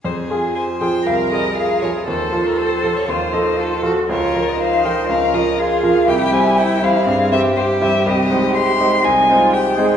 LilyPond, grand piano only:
\new Staff \with { instrumentName = "Grand piano" } { \time 4/4 \key f \minor \tempo 4 = 120 f,8 <f f' aes'>4 <f f' aes'>8 c,8 <f f' aes'>4 <f f' aes'>8 | ees,8 <f f' a'>4 <f f' a'>8 ees,8 <f f' a'>4 <f f' a'>8 | des,8 <f f' bes'>4 <f f' bes'>8 des,8 <f f' bes'>4 <f f' bes'>8 | c,8 <g e' c''>4 <g e' c''>8 g,8 <g e' c''>4 <g e' c''>8 |
\key aes \major c,8 <aes ees' c''>4 <aes ees' c''>8 c,8 <aes ees' c''>4 <aes ees' c''>8 | }